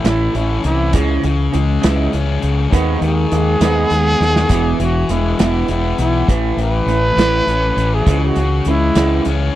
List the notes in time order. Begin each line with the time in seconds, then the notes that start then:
Already playing: A2 E3 A3
0.04 A1 A2 E3 A3 E4, snare, closed hi-hat
0.35 A1 A2 E3 C#4 E4, closed hi-hat
0.64 C2 E3 E4, closed hi-hat
0.93 C#2 C#3 E3 G#3, kick, closed hi-hat
1.23 C#2 C#3 E3, closed hi-hat
1.52 C#2 C#3 E3 G#3, closed hi-hat
1.81 C#2 C#3 E3 G#3 E4, snare, closed hi-hat
2.12 C#2 C#3 E3 C#4, closed hi-hat
2.42 C#2 C#3, closed hi-hat
2.71 D#2 D#3 G#3 B3, kick, closed hi-hat
3.01 D#2 D#3 G#3 G#4, closed hi-hat
3.31 D#2 D#3 G#3, closed hi-hat
3.60 D#2 D#3 G#3 B3 D#4, snare, closed hi-hat
3.90 D#2 D#3 G#3 B3, closed hi-hat
4.20 D#2 D#3, snare
4.36 snare
4.49 E1 E2 B2 E3, kick, closed hi-hat, splash
4.79 E1 E2 B2 E3 F#4, closed hi-hat
5.09 E1 E2 B2 G#3 E4, closed hi-hat
5.39 E1 E2 B2 E3 E4, snare, closed hi-hat
5.68 E1 E2 B2 B3 E4, closed hi-hat
5.98 B1 E3 E4, closed hi-hat
6.28 A1 A2 E3 A3, kick, closed hi-hat
6.57 A1 A2 E3, closed hi-hat
6.61 B4
6.86 A1 A2 E3 A3, closed hi-hat
7.17 A1 A2 E3 A3 E4, snare, closed hi-hat
7.46 A1 A2 E3 C#4, closed hi-hat
7.77 A1 E3, closed hi-hat
7.94 G#4
8.06 C#2 C#3 E3 G#3, kick, closed hi-hat
8.25 F#4
8.36 C#2 C#3 E3, closed hi-hat
8.65 C#2 C#3 E3 G#3, closed hi-hat
8.69 E4
8.95 C#2 C#3 E3 G#3 E4, snare, closed hi-hat
9.25 C#2 C#3 E3 C#4, closed hi-hat